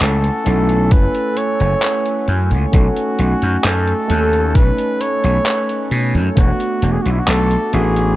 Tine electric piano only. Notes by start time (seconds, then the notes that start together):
Already playing: A3 C#4 E4 A4
0.44 A3 C#4 E4 A4
2.72 A3 C#4 D#4 A4
4.08 A3 C#4 D#4 A4
6.35 A3 B3 D4 F#4
7.72 A3 B3 D4 F#4